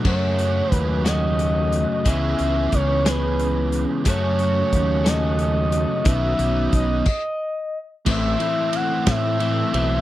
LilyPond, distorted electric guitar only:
\new Staff \with { instrumentName = "Distorted electric guitar" } { \time 6/8 \key fis \dorian \tempo 4. = 60 <fis, cis fis a cis' fis'>2. | <cis e gis cis' e'>2. | <fis, cis fis a cis' fis'>2. | <b, fis b dis' fis'>4. r4. |
<a, e a c' e'>8 <a, e a c' e'>4 <a, e a c' e'>8 <a, e a c' e'>8 <a, e a c' e'>8 | }